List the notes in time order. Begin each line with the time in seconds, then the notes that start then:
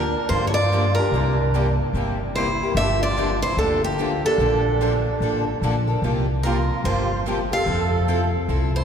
Already playing: D2 D4 A#4
0.29 G2 D3 F3 A#3 D4 F4 G4 C5
0.47 E4 C#5
0.54 F4 D5
0.73 D3 F3 A#3 D4 G4
0.95 D4 G4 A#4
1.00 A#3 D4
1.11 C2 C3
1.15 G3 A#3 E4 G4
1.55 C3 G3 A#3 E4 G4
1.93 G1 C3 G3 A#3 E4
1.97 G4
2.34 C3 G3 A#3 E4 G4 C5
2.63 A#3 E4 G4
2.74 G1 D3 F3 G4 E5
2.79 A#3 D4 G4
3.00 F4 D5
3.17 D3 F3 A#3 D4 G4
3.42 E4 C5
3.57 D2 D3 F3 A#3 D4 G4 A4
3.82 A#3 G4
3.99 D3 F3 A#3 D4 G4
4.25 A#3 D4 G4 A4
4.38 A#1 D3 F3 A#3 D4 A4
4.81 D3 F3 A#3 D4 A4
5.20 A1 D3 F3 A#3 D4 A4
5.61 A#1 D3 F3 A#3 D4 A4
5.87 A#3 D4 A4
6.02 C2 C3 F3 A#3 F4 G4
6.43 C3 F3 A#3 F4 G4 A#4
6.83 G1 F4 C5
6.87 C3 F3 A#3 F4 G4
7.27 C3 F3 A#3 F4 G4
7.51 A#3 F4 G4 A4 F5
7.66 F2 F3 C4 E4 A4
8.08 F3 C4 E4 A4
8.48 C2 F3 C4 E4 A4
8.73 E4 C5